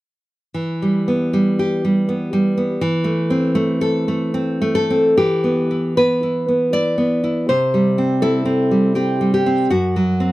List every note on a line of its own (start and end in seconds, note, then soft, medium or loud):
0.54 2.76 E3 soft
0.82 1.32 G3 soft
1.08 2.07 B3 soft
1.33 1.83 G3 soft
1.59 2.69 G4 soft
1.85 2.32 G3 soft
2.09 2.56 B3 soft
2.33 2.81 G3 soft
2.57 2.81 B3 soft
2.81 5.14 E3 medium
3.04 3.54 A3 soft
3.30 4.33 C4 soft
3.55 4.07 A3 medium
3.81 4.74 A4 medium
4.08 4.60 A3 soft
4.34 4.89 C4 soft
4.62 5.18 A3 medium
4.75 5.15 A4 medium
4.90 5.18 C4 soft
5.17 7.45 E3 soft
5.17 5.93 G4 medium
5.44 5.97 B3 soft
5.71 6.22 E4 soft
5.97 6.47 B3 soft
5.97 6.71 B4 medium
6.23 6.72 E4 soft
6.48 6.96 B3 soft
6.73 7.22 E4 soft
6.73 7.46 D5 medium
6.98 7.49 B3 soft
7.24 7.49 E4 soft
7.49 9.66 C3 soft
7.49 8.19 C5 medium
7.74 8.70 G3 soft
7.98 8.44 C4 soft
8.22 9.33 E4 soft
8.22 8.93 A4 medium
8.45 8.94 C4 soft
8.71 9.20 G3 soft
8.95 9.45 C4 soft
8.95 9.31 G4 soft
9.21 9.70 G3 soft
9.34 9.69 G4 medium
9.46 9.71 C4 soft
9.70 10.32 F#2 soft
9.70 10.32 F#4 medium
9.96 10.32 F#3 soft
10.20 10.32 C4 soft